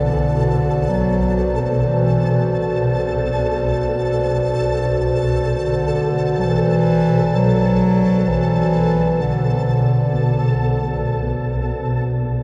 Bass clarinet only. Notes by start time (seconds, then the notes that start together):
Already playing: D3
0.89 F#3
1.83 E3
5.55 D3
6.39 F#3
6.45 E3
7.36 F#3
8.29 E3
9.22 D3